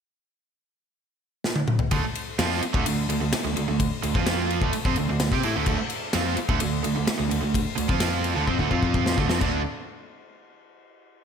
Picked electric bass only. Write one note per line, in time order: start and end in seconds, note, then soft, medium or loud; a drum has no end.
1.92 2.03 D2 loud
2.04 muted picked electric bass stroke soft
2.39 2.61 F2 loud
2.63 muted picked electric bass stroke soft
2.75 2.85 D2 loud
2.86 3.08 D2 medium
3.08 3.20 D2 medium
3.21 3.32 D2 medium
3.33 muted picked electric bass stroke soft
3.45 3.55 D2 medium
3.56 3.67 D2 medium
3.68 3.90 D2 medium
4.04 4.14 D2 medium
4.15 4.58 F2 medium
4.62 4.72 D2 loud
4.74 muted picked electric bass stroke soft
4.86 4.96 F2 medium
4.98 5.08 D2 medium
5.09 5.30 D2 medium
5.32 5.43 C3 loud
5.45 5.55 A2 loud
5.56 5.67 D2 medium
5.67 5.78 D2 medium
5.80 muted picked electric bass stroke soft
6.14 6.36 F2 loud
6.39 muted picked electric bass stroke soft
6.49 6.60 D2 loud
6.62 6.83 D2 medium
6.86 6.96 D2 medium
6.98 7.08 D2 medium
7.08 muted picked electric bass stroke soft
7.20 7.30 D2 medium
7.32 7.42 D2 medium
7.43 7.65 D2 medium
7.78 7.88 D2 medium
7.90 8.33 F2 medium
8.37 8.47 D2 loud
8.48 8.59 F2 medium
8.59 8.70 D2 medium
8.71 9.15 F2 loud
9.18 9.28 D2 medium
9.29 9.40 F2 medium
9.42 9.63 D2 medium